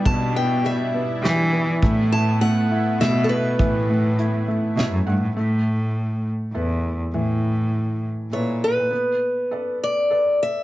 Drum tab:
HH |x-x-x-|x-x-x-|x-x-x-|------|
SD |----o-|----o-|----o-|------|
BD |o-----|o-----|o-----|------|

HH |------|------|
SD |------|------|
BD |------|------|